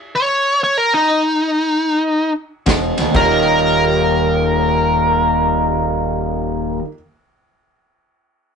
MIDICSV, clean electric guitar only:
0, 0, Header, 1, 2, 480
1, 0, Start_track
1, 0, Tempo, 500000
1, 8209, End_track
2, 0, Start_track
2, 0, Title_t, "Clean electric guitar"
2, 0, Program_c, 0, 27
2, 2555, Note_on_c, 0, 40, 77
2, 2562, Note_on_c, 0, 47, 90
2, 2824, Note_off_c, 0, 40, 0
2, 2828, Note_off_c, 0, 47, 0
2, 2857, Note_on_c, 0, 40, 73
2, 2862, Note_on_c, 0, 47, 74
2, 2999, Note_off_c, 0, 40, 0
2, 3003, Note_on_c, 0, 39, 94
2, 3004, Note_off_c, 0, 47, 0
2, 3012, Note_on_c, 0, 46, 83
2, 3022, Note_on_c, 0, 51, 99
2, 3027, Note_on_c, 0, 55, 84
2, 3032, Note_on_c, 0, 58, 108
2, 3040, Note_on_c, 0, 63, 102
2, 6524, Note_off_c, 0, 39, 0
2, 6533, Note_off_c, 0, 46, 0
2, 6543, Note_off_c, 0, 51, 0
2, 6548, Note_off_c, 0, 55, 0
2, 6553, Note_off_c, 0, 58, 0
2, 6562, Note_off_c, 0, 63, 0
2, 8209, End_track
0, 0, End_of_file